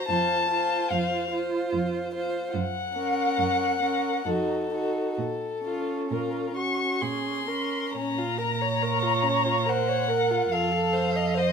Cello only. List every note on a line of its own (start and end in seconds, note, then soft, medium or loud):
0.09 0.78 F2 medium
0.91 1.61 F2 medium
1.73 2.42 F2 medium
2.54 3.25 F#2 medium
3.38 4.13 F#2 soft
4.26 5.04 F2 soft
5.18 5.97 A#2 soft
6.11 6.89 A#2 soft
7.02 7.82 A#2 soft
7.96 10.49 A#2 soft
10.53 11.52 F2 soft